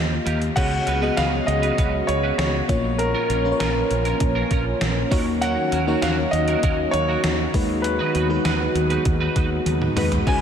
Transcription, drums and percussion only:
0.27 closed hi-hat
0.42 closed hi-hat
0.57 kick, closed hi-hat, crash
0.87 closed hi-hat
1.17 snare, closed hi-hat
1.48 closed hi-hat
1.63 closed hi-hat
1.78 kick, closed hi-hat
2.09 closed hi-hat
2.39 snare, closed hi-hat
2.69 kick, closed hi-hat
2.99 closed hi-hat
3.30 closed hi-hat
3.60 snare, closed hi-hat
3.91 closed hi-hat
4.05 closed hi-hat
4.20 kick, closed hi-hat
4.51 kick, closed hi-hat
4.81 snare, closed hi-hat
5.12 kick, open hi-hat
5.42 closed hi-hat
5.72 closed hi-hat
6.02 snare, closed hi-hat
6.33 closed hi-hat
6.48 closed hi-hat
6.63 kick, closed hi-hat
6.94 closed hi-hat
7.24 snare, closed hi-hat
7.54 kick, open hi-hat
7.84 closed hi-hat
8.15 closed hi-hat
8.45 snare, closed hi-hat
8.76 closed hi-hat
8.90 closed hi-hat
9.05 kick, closed hi-hat
9.36 kick, closed hi-hat
9.66 closed hi-hat, high tom
9.82 mid tom
9.97 mid tom, open hi-hat
10.12 closed hi-hat, floor tom
10.27 kick, crash

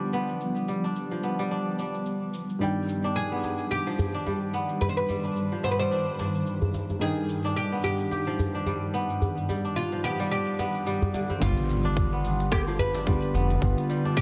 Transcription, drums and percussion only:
0.13 cabasa
0.29 cabasa
0.41 cabasa
0.56 cabasa
0.68 cabasa
0.84 cabasa
0.96 cabasa
1.12 cabasa
1.23 cabasa
1.39 cabasa
1.51 cabasa
1.79 cabasa
1.94 cabasa
2.06 cabasa
2.34 cabasa
2.49 cabasa
2.61 cabasa
2.89 cabasa
3.05 cabasa
3.16 cabasa
3.44 djembe slap, cabasa
3.59 cabasa
3.71 djembe slap, cabasa
3.99 djembe bass, cabasa
4.15 cabasa
4.26 djembe tone, cabasa
4.54 cabasa
4.69 cabasa
4.81 djembe bass, cabasa
5.09 djembe tone, cabasa
5.25 cabasa
5.36 cabasa
5.63 djembe slap, cabasa
5.80 cabasa
5.92 cabasa
6.19 djembe slap, cabasa
6.35 cabasa
6.47 cabasa
6.62 djembe tone, djembe bass
6.74 djembe tone, cabasa
6.90 djembe tone, cabasa
7.02 cabasa
7.29 cabasa
7.45 cabasa
7.57 cabasa
7.84 djembe slap, cabasa
8.00 cabasa
8.12 djembe slap, cabasa
8.39 djembe bass, cabasa
8.55 cabasa
8.66 djembe tone, cabasa
8.94 cabasa
9.10 cabasa
9.22 djembe bass, cabasa
9.38 cabasa
9.49 djembe tone, cabasa
9.65 cabasa
9.77 cabasa
9.92 cabasa
10.04 djembe slap, cabasa
10.20 cabasa
10.31 cabasa
10.59 djembe slap, cabasa
10.75 cabasa
10.86 cabasa
11.02 djembe tone, djembe bass, cabasa
11.14 djembe tone, cabasa
11.30 djembe slap, djembe tone, cabasa
11.42 kick, closed hi-hat, cabasa
11.57 closed hi-hat, cabasa
11.69 closed hi-hat, cabasa
11.85 cabasa
11.97 kick, closed hi-hat, cabasa
12.25 closed hi-hat, cabasa
12.40 closed hi-hat, cabasa
12.52 kick, cross-stick, closed hi-hat, cabasa
12.79 closed hi-hat, djembe bass, cabasa
12.94 closed hi-hat, djembe slap, cabasa
13.07 kick, closed hi-hat, djembe tone, cabasa
13.23 cabasa
13.35 djembe slap, cabasa
13.50 closed hi-hat, djembe slap, cabasa
13.62 kick, closed hi-hat, cabasa
13.78 closed hi-hat, cabasa
13.90 closed hi-hat, cabasa
14.06 djembe slap, cabasa
14.17 kick, closed hi-hat, cabasa

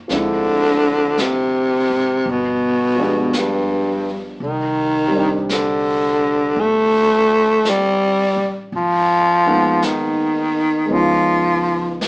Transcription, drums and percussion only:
0.09 brush sweep, snare
1.18 brush sweep, snare, hi-hat pedal
2.25 brush sweep
3.33 brush sweep, snare, hi-hat pedal
4.41 brush sweep
5.49 brush sweep, snare, hi-hat pedal
6.57 brush sweep
7.65 brush sweep, snare, hi-hat pedal
8.74 brush sweep
9.82 brush sweep, snare, hi-hat pedal
10.91 brush sweep
12.01 brush sweep, snare, hi-hat pedal

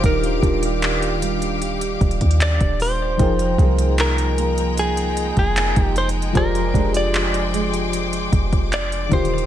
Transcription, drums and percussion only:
0.04 kick, closed hi-hat
0.24 closed hi-hat
0.43 kick, closed hi-hat
0.63 closed hi-hat
0.82 clap, closed hi-hat
1.02 closed hi-hat
1.22 closed hi-hat
1.42 closed hi-hat
1.62 closed hi-hat
1.81 closed hi-hat
2.01 kick, closed hi-hat
2.11 closed hi-hat
2.21 kick, closed hi-hat
2.31 closed hi-hat
2.41 clap, closed hi-hat
2.61 kick, closed hi-hat
2.80 open hi-hat
3.19 kick, closed hi-hat
3.39 closed hi-hat
3.58 kick, closed hi-hat
3.79 closed hi-hat
3.98 clap, closed hi-hat
4.18 closed hi-hat
4.38 closed hi-hat
4.58 closed hi-hat
4.78 closed hi-hat
4.97 closed hi-hat
5.17 closed hi-hat
5.37 kick, closed hi-hat
5.57 clap, closed hi-hat
5.76 kick, closed hi-hat
5.96 closed hi-hat
6.09 closed hi-hat
6.22 closed hi-hat
6.35 kick, closed hi-hat
6.55 closed hi-hat
6.74 kick, closed hi-hat
6.94 closed hi-hat
7.14 clap, closed hi-hat
7.34 closed hi-hat
7.54 closed hi-hat
7.74 closed hi-hat
7.93 closed hi-hat
8.13 closed hi-hat
8.33 kick, closed hi-hat
8.53 kick, closed hi-hat
8.73 clap, closed hi-hat
8.92 closed hi-hat
9.12 kick, closed hi-hat, open hi-hat
9.25 closed hi-hat
9.38 closed hi-hat

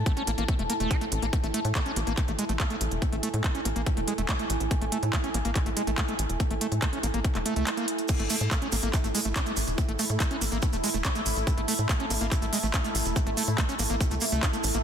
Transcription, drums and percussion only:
0.06 kick, closed hi-hat
0.17 closed hi-hat
0.27 closed hi-hat
0.38 closed hi-hat
0.48 kick, closed hi-hat
0.59 closed hi-hat
0.70 closed hi-hat
0.80 closed hi-hat
0.91 kick, closed hi-hat
1.01 closed hi-hat
1.12 closed hi-hat
1.22 closed hi-hat
1.33 kick, closed hi-hat
1.44 closed hi-hat
1.54 closed hi-hat
1.65 closed hi-hat
1.75 kick, clap, closed hi-hat
1.86 closed hi-hat
1.96 closed hi-hat
2.07 closed hi-hat
2.17 kick, clap, closed hi-hat
2.28 closed hi-hat
2.39 closed hi-hat
2.49 closed hi-hat
2.60 kick, clap, closed hi-hat
2.70 closed hi-hat
2.81 closed hi-hat
2.91 closed hi-hat
3.02 kick, closed hi-hat
3.12 closed hi-hat
3.23 closed hi-hat
3.34 closed hi-hat
3.44 kick, clap, closed hi-hat
3.55 closed hi-hat
3.65 closed hi-hat
3.76 closed hi-hat
3.86 kick, closed hi-hat
3.97 closed hi-hat
4.08 closed hi-hat
4.18 closed hi-hat
4.29 kick, clap, closed hi-hat
4.39 closed hi-hat
4.50 closed hi-hat
4.60 closed hi-hat
4.71 kick, closed hi-hat
4.82 closed hi-hat
4.92 closed hi-hat
5.03 closed hi-hat
5.13 kick, clap, closed hi-hat
5.24 closed hi-hat
5.34 closed hi-hat
5.45 closed hi-hat
5.55 kick, clap, closed hi-hat
5.66 closed hi-hat
5.77 closed hi-hat
5.87 closed hi-hat
5.98 kick, clap, closed hi-hat
6.08 closed hi-hat
6.19 closed hi-hat
6.29 closed hi-hat
6.40 kick, closed hi-hat
6.51 closed hi-hat
6.61 closed hi-hat
6.72 closed hi-hat
6.82 kick, clap, closed hi-hat
6.93 closed hi-hat
7.03 closed hi-hat
7.14 closed hi-hat
7.25 kick, closed hi-hat
7.35 clap, closed hi-hat
7.46 closed hi-hat
7.56 closed hi-hat
7.67 clap, closed hi-hat
7.77 closed hi-hat
7.88 closed hi-hat
7.98 closed hi-hat
8.08 kick, closed hi-hat, crash, maracas
8.20 closed hi-hat
8.30 open hi-hat, maracas
8.40 closed hi-hat, maracas
8.51 kick, clap, closed hi-hat, maracas
8.62 closed hi-hat
8.72 open hi-hat, maracas
8.83 closed hi-hat, maracas
8.93 kick, clap, closed hi-hat, maracas
9.04 closed hi-hat, maracas
9.15 open hi-hat, maracas
9.25 closed hi-hat, maracas
9.36 kick, clap, closed hi-hat, maracas
9.46 closed hi-hat, maracas
9.57 open hi-hat, maracas
9.67 closed hi-hat, maracas
9.78 kick, closed hi-hat, maracas
9.89 closed hi-hat
9.99 open hi-hat, maracas
10.10 closed hi-hat, maracas
10.20 kick, clap, closed hi-hat, maracas
10.31 closed hi-hat
10.41 open hi-hat, maracas
10.52 closed hi-hat, maracas
10.62 kick, closed hi-hat, maracas
10.73 closed hi-hat, maracas
10.84 open hi-hat, maracas
10.94 closed hi-hat, maracas
11.04 kick, clap, closed hi-hat, maracas
11.15 closed hi-hat, maracas
11.26 open hi-hat, maracas
11.36 closed hi-hat, maracas
11.47 kick, closed hi-hat, maracas
11.58 closed hi-hat
11.68 open hi-hat, maracas
11.79 closed hi-hat, maracas
11.89 kick, clap, closed hi-hat, maracas
12.00 closed hi-hat
12.10 open hi-hat, maracas
12.21 closed hi-hat, maracas
12.32 kick, clap, closed hi-hat, maracas
12.42 closed hi-hat, maracas
12.53 open hi-hat, maracas
12.63 closed hi-hat, maracas
12.74 kick, clap, closed hi-hat, maracas
12.84 closed hi-hat, maracas
12.95 open hi-hat, maracas
13.05 closed hi-hat, maracas
13.16 kick, closed hi-hat, maracas
13.27 closed hi-hat
13.37 open hi-hat, maracas
13.48 closed hi-hat, maracas
13.58 kick, clap, closed hi-hat, maracas
13.69 closed hi-hat, maracas
13.79 open hi-hat, maracas
13.90 closed hi-hat, maracas
14.01 kick, closed hi-hat, maracas
14.11 closed hi-hat, maracas
14.21 open hi-hat, maracas
14.32 closed hi-hat, maracas
14.43 kick, clap, closed hi-hat, maracas
14.53 closed hi-hat, maracas
14.64 open hi-hat, maracas
14.74 closed hi-hat, maracas

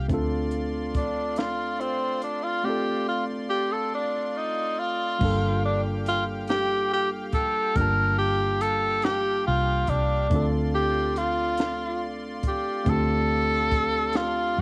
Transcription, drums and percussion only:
0.10 kick, closed hi-hat
0.51 closed hi-hat
0.95 kick, closed hi-hat
1.36 snare, closed hi-hat
1.81 closed hi-hat
2.22 closed hi-hat
5.21 kick, crash
6.06 closed hi-hat
6.48 snare, closed hi-hat
7.33 kick, closed hi-hat
7.76 kick, closed hi-hat
8.61 closed hi-hat
9.02 snare, closed hi-hat
9.87 kick, closed hi-hat
10.31 kick, closed hi-hat
11.16 closed hi-hat
11.57 snare, closed hi-hat
12.43 kick, closed hi-hat
12.86 kick, closed hi-hat
13.71 kick, closed hi-hat
14.13 snare, closed hi-hat

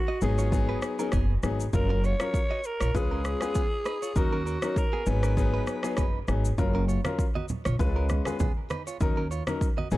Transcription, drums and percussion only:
0.21 shaker
0.38 shaker
0.52 kick, shaker
0.82 cross-stick, shaker
0.99 shaker
1.12 kick, cross-stick, shaker
1.43 cross-stick, shaker
1.60 shaker
1.73 kick, shaker
2.04 shaker
2.20 cross-stick, shaker
2.34 kick, shaker
2.64 shaker
2.81 cross-stick, shaker
2.95 kick, shaker
3.25 cross-stick, shaker
3.41 cross-stick, shaker
3.55 kick, shaker
3.86 cross-stick, shaker
4.03 shaker
4.16 kick, shaker
4.47 shaker
4.62 cross-stick, shaker
4.76 kick, shaker
5.06 shaker
5.23 cross-stick, shaker
5.37 kick, shaker
5.67 cross-stick, shaker
5.83 cross-stick, shaker
5.97 kick, cross-stick, shaker
6.28 cross-stick, shaker
6.45 shaker
6.58 kick, shaker
6.89 shaker
7.05 cross-stick, high conga, shaker
7.19 kick, shaker
7.36 high conga
7.49 low conga, shaker
7.65 cross-stick, high conga, shaker
7.79 kick, shaker
8.09 cross-stick, high conga, shaker
8.25 cross-stick, high conga, shaker
8.40 kick, high conga, low conga, shaker
8.70 cross-stick, high conga, shaker
8.87 shaker
9.01 kick, shaker
9.32 shaker
9.47 cross-stick, high conga, shaker
9.61 kick, shaker
9.78 high conga
9.91 shaker

